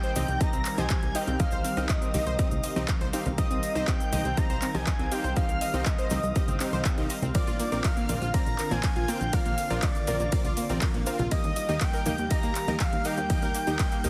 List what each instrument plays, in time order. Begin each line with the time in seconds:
Already playing: analog synth pad D#3 G3 C4 A#4, synth texture F5, analog synth lead G5, violin section G6
0.03 synth pluck C5, closed hi-hat, cabasa
0.16 analog synth bass C2, synth pluck C4, supersaw synth C4 D#4 G4 D#5, open hi-hat, high conga, low conga, cabasa
0.28 analog synth bass C2, closed hi-hat, cabasa
0.41 supersaw synth C4 D#4 G4 D#5, synth pluck D#5, analog synth lead A#5, violin section A#6, kick, closed hi-hat, cabasa
0.53 analog synth bass C2, synth pluck C4, closed hi-hat, cabasa
0.65 clap, open hi-hat, cabasa
0.78 analog synth bass C2, supersaw synth C4 D#4 G4 D#5, synth pluck C5, analog synth lead G#5, violin section G#6, closed hi-hat, high conga, cabasa
0.90 synth pluck C4, kick, clap, closed hi-hat, cabasa
1.03 analog synth bass C2, closed hi-hat
1.15 supersaw synth C4 D#4 G4 F5, synth pluck D#5, analog synth lead G5, violin section G6, open hi-hat, cabasa
1.27 analog synth bass C2, synth pluck C4, closed hi-hat, cabasa
1.40 supersaw synth C4 D#4 G4 D#5, analog synth lead F5, violin section F6, kick, closed hi-hat, high conga, cabasa
1.51 analog synth bass C2, synth pluck C5, closed hi-hat, cabasa
1.64 synth pluck C4, open hi-hat, cabasa
1.77 analog synth bass C2, supersaw synth C4 D#4 G4 D#5, closed hi-hat, cabasa
1.89 analog synth lead D#5, synth pluck D#5, violin section D#6, kick, clap, closed hi-hat, cabasa
2.02 synth pluck C4, closed hi-hat, cabasa
2.14 analog synth bass C2, supersaw synth C4 D#4 G4 D#5, open hi-hat, high conga, low conga, cabasa
2.26 analog synth bass C2, synth pluck C5, closed hi-hat, cabasa
2.39 supersaw synth C4 D#4 G4 D#5, synth pluck C4, kick, closed hi-hat, cabasa
2.51 analog synth bass C2, closed hi-hat, low conga, cabasa
2.64 synth pluck D#5, open hi-hat, cabasa
2.76 analog synth bass C2, supersaw synth C4 D#4 G4 D#5, synth pluck C4, closed hi-hat, high conga, cabasa
2.88 kick, clap, closed hi-hat, cabasa
3.01 analog synth bass C2, synth pluck C5, closed hi-hat
3.13 supersaw synth C4 D#4 G4 F5, synth pluck C4, open hi-hat, cabasa
3.25 analog synth bass C2, closed hi-hat, low conga, cabasa
3.38 supersaw synth C4 D#4 G4 D#5, analog synth lead D#5, synth pluck D#5, violin section D#6, kick, closed hi-hat, high conga, cabasa
3.51 analog synth bass C2, synth pluck C4, closed hi-hat, cabasa
3.63 open hi-hat, cabasa
3.75 analog synth bass C2, supersaw synth C4 D#4 G4 D#5, synth pluck C5, closed hi-hat, cabasa
3.87 synth pluck C4, analog synth lead G5, violin section G6, kick, clap, closed hi-hat, cabasa
4.00 closed hi-hat, cabasa
4.12 analog synth bass C2, supersaw synth C4 D#4 G4 D#5, synth pluck D#5, open hi-hat, high conga, low conga, cabasa
4.25 analog synth bass C2, synth pluck C4, closed hi-hat, cabasa
4.37 supersaw synth C4 D#4 G4 D#5, analog synth lead A#5, violin section A#6, kick, closed hi-hat, cabasa
4.50 analog synth bass C2, synth pluck C5, closed hi-hat, cabasa
4.62 synth pluck C4, clap, open hi-hat, cabasa
4.75 analog synth bass C2, supersaw synth C4 D#4 G4 D#5, analog synth lead G#5, violin section G#6, closed hi-hat, high conga, cabasa
4.87 synth pluck D#5, kick, clap, closed hi-hat, cabasa
4.99 analog synth bass C2, synth pluck C4, closed hi-hat
5.12 supersaw synth C4 D#4 G4 F5, analog synth lead G5, violin section G6, open hi-hat, cabasa
5.24 analog synth bass C2, synth pluck C5, closed hi-hat, cabasa
5.36 supersaw synth C4 D#4 G4 D#5, synth pluck C4, analog synth lead F5, violin section F6, kick, closed hi-hat, high conga, cabasa
5.49 analog synth bass C2, closed hi-hat, cabasa
5.61 synth pluck D#5, open hi-hat, cabasa
5.74 analog synth bass C2, supersaw synth C4 D#4 G4 D#5, synth pluck C4, closed hi-hat, cabasa
5.86 analog synth lead D#5, violin section D#6, kick, clap, closed hi-hat, cabasa
5.98 synth pluck C5, closed hi-hat, cabasa
6.10 analog synth bass C2, supersaw synth C4 D#4 G4 D#5, synth pluck C4, open hi-hat, high conga, low conga, cabasa
6.23 analog synth bass C2, closed hi-hat, cabasa
6.35 supersaw synth C4 D#4 G4 D#5, synth pluck D#5, kick, closed hi-hat, cabasa
6.48 analog synth bass G1, synth pluck C4, closed hi-hat, low conga, cabasa
6.60 supersaw synth C4 D#4 G4 F5, clap, open hi-hat, cabasa
6.73 analog synth bass C2, synth pluck C5, closed hi-hat, high conga, cabasa
6.85 synth pluck C4, kick, clap, closed hi-hat, cabasa
6.98 analog synth bass C2, supersaw synth C4 D#4 G4 D#5, closed hi-hat
7.10 synth pluck D#5, open hi-hat, cabasa
7.22 analog synth bass C2, synth pluck C4, closed hi-hat, low conga, cabasa
7.34 analog synth pad D3 A#3 F4, supersaw synth C4 F4 A#4 D5, analog synth lead D5, violin section D6, kick, closed hi-hat, ride, high conga, cabasa
7.47 analog synth bass A#1, synth pluck F4, closed hi-hat, cabasa
7.60 synth pluck A#3, open hi-hat, cabasa
7.72 analog synth bass A#1, supersaw synth C4 F4 A#4 D5, closed hi-hat, cabasa
7.84 synth pluck A#4, analog synth lead F5, violin section F6, kick, clap, closed hi-hat, ride, cabasa
7.97 synth pluck A#3, closed hi-hat, cabasa
8.09 analog synth bass A#1, supersaw synth C4 F4 A#4 D5, open hi-hat, high conga, low conga, cabasa
8.22 analog synth bass A#1, synth pluck F4, closed hi-hat, cabasa
8.34 synth pluck A#3, supersaw synth C4 F4 A#4 D5, analog synth lead A#5, violin section A#6, kick, closed hi-hat, ride, cabasa
8.46 analog synth bass A#1, closed hi-hat, cabasa
8.58 synth pluck A#4, clap, open hi-hat, cabasa
8.71 analog synth bass A#1, synth pluck A#3, supersaw synth C4 F4 A#4 D5, analog synth lead G#5, violin section G#6, closed hi-hat, high conga, cabasa
8.83 kick, clap, closed hi-hat, ride, cabasa
8.96 analog synth bass A#1, synth pluck F4, closed hi-hat
9.08 synth pluck A#3, supersaw synth C4 F4 A#4 F5, analog synth lead G5, violin section G6, open hi-hat, cabasa
9.21 analog synth bass A#1, closed hi-hat, cabasa
9.33 supersaw synth C4 F4 A#4 D5, synth pluck A#4, analog synth lead F5, violin section F6, kick, closed hi-hat, ride, high conga, cabasa
9.45 analog synth bass A#1, synth pluck A#3, closed hi-hat, cabasa
9.58 open hi-hat, cabasa
9.70 analog synth bass A#1, supersaw synth C4 F4 A#4 D5, synth pluck F4, closed hi-hat, cabasa
9.82 synth pluck A#3, analog synth lead D5, violin section D6, kick, clap, closed hi-hat, ride, cabasa
9.95 closed hi-hat, cabasa
10.07 analog synth bass A#1, supersaw synth C4 F4 A#4 D5, synth pluck A#4, open hi-hat, high conga, low conga, cabasa
10.20 analog synth bass A#1, synth pluck A#3, closed hi-hat, cabasa
10.32 supersaw synth C4 F4 A#4 D5, kick, closed hi-hat, ride, cabasa
10.45 analog synth bass A#1, synth pluck F4, closed hi-hat, low conga, cabasa
10.57 synth pluck A#3, open hi-hat, cabasa
10.69 analog synth bass A#1, supersaw synth C4 F4 A#4 D5, closed hi-hat, high conga, cabasa
10.81 synth pluck A#4, kick, clap, closed hi-hat, ride, cabasa
10.94 analog synth bass A#1, synth pluck A#3, closed hi-hat
11.06 supersaw synth C4 F4 A#4 F5, open hi-hat, cabasa
11.19 analog synth bass A#1, synth pluck F4, closed hi-hat, low conga, cabasa
11.31 analog synth pad D#3 G3 G4, supersaw synth A#3 D#4 G4 D#5, synth pluck A#3, analog synth lead D#5, violin section D#6, kick, closed hi-hat, ride, high conga, cabasa
11.44 analog synth bass D#2, closed hi-hat, cabasa
11.56 synth pluck D#5, open hi-hat, cabasa
11.69 analog synth bass D#2, supersaw synth A#3 D#4 G4 D#5, synth pluck A#3, closed hi-hat, cabasa
11.81 analog synth lead G5, violin section G6, kick, clap, closed hi-hat, ride, cabasa
11.93 synth pluck A#4, closed hi-hat, cabasa
12.06 analog synth bass D#2, supersaw synth A#3 D#4 G4 D#5, synth pluck A#3, open hi-hat, high conga, low conga, cabasa
12.18 analog synth bass D#2, closed hi-hat, cabasa
12.31 supersaw synth A#3 D#4 G4 D#5, synth pluck D#5, analog synth lead A#5, violin section A#6, kick, closed hi-hat, ride, cabasa
12.43 analog synth bass D#2, synth pluck A#3, closed hi-hat, cabasa
12.55 clap, open hi-hat, cabasa
12.68 analog synth bass D#2, supersaw synth A#3 D#4 G4 D#5, synth pluck A#4, closed hi-hat, high conga, cabasa
12.80 synth pluck A#3, analog synth lead F5, violin section F6, kick, clap, closed hi-hat, ride, cabasa
12.93 analog synth bass D#2, closed hi-hat
13.05 supersaw synth A#3 D#4 G4 F5, synth pluck D#5, analog synth lead G5, violin section G6, open hi-hat, cabasa
13.17 analog synth bass D#2, synth pluck A#3, closed hi-hat, cabasa
13.30 supersaw synth A#3 D#4 G4 D#5, kick, closed hi-hat, ride, high conga, cabasa
13.42 analog synth bass D#2, synth pluck A#4, closed hi-hat, cabasa
13.54 synth pluck A#3, open hi-hat, cabasa
13.67 analog synth bass D#2, supersaw synth A#3 D#4 G4 D#5, closed hi-hat, cabasa
13.79 synth pluck D#5, kick, clap, closed hi-hat, ride, cabasa
13.92 synth pluck A#3, closed hi-hat, cabasa
14.04 analog synth bass D#2, supersaw synth A#3 D#4 G4 D#5, open hi-hat, high conga, low conga, cabasa